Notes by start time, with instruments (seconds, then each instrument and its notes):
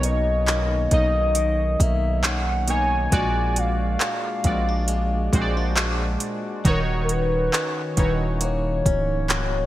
Already playing: 808-style bass B1, synth keys B2 A#3 D#4 C#5, clean electric guitar B2 C#4 F#4
0.03 soft synth lead D#5, closed hi-hat
0.47 clean electric guitar D#3 A#3 C#4, clap, closed hi-hat
0.91 808-style bass B1, synth keys B2 A#3 D#4 D#5, clean electric guitar A#3, soft synth lead D#5, kick, closed hi-hat
1.35 clean electric guitar D#3, closed hi-hat
1.80 808-style bass B1, clean electric guitar A#3, soft synth lead E5, kick, closed hi-hat
2.24 clean electric guitar D#3 A#3 C#4, soft synth lead F#5, clap, closed hi-hat
2.68 synth keys B2 A#3 D#4 C#5, soft synth lead G#5, closed hi-hat
3.11 808-style bass A#1, synth keys A#2 G#3 F#4 D5, clean electric guitar A#2 F#4, kick, closed hi-hat
3.56 soft synth lead F5, closed hi-hat
4.00 clean electric guitar G#3 D4 F#4, clap, closed hi-hat
4.44 808-style bass A#1, synth keys A#2 G#3 F#4 D5, clean electric guitar C4, kick, closed hi-hat
4.69 clean electric guitar D4
4.88 clean electric guitar G#3, closed hi-hat
5.32 808-style bass A#1, synth keys A#2 G#3 F#4 C5, clean electric guitar C4, kick, closed hi-hat
5.42 synth keys D5
5.57 clean electric guitar D4
5.77 clean electric guitar G#3 D4 F#4, clap, closed hi-hat
6.20 closed hi-hat
6.64 808-style bass D#1, synth keys D#3 D#4 F#4 C#5, clean electric guitar D#3 F#4, soft synth lead A#4, kick, closed hi-hat
7.05 soft synth lead A#4
7.09 soft synth lead B4, closed hi-hat
7.53 clean electric guitar C#4 F#4, clap, closed hi-hat
7.97 808-style bass D#1, synth keys D#3 D#4 E4 C#5, clean electric guitar C#4, soft synth lead B4, kick, closed hi-hat
8.05 synth keys F#4
8.41 clean electric guitar A#3, soft synth lead C#5, closed hi-hat
8.86 808-style bass C#1, clean electric guitar C#4, kick, closed hi-hat
9.29 clean electric guitar A#3 C#4 F#4, clap, closed hi-hat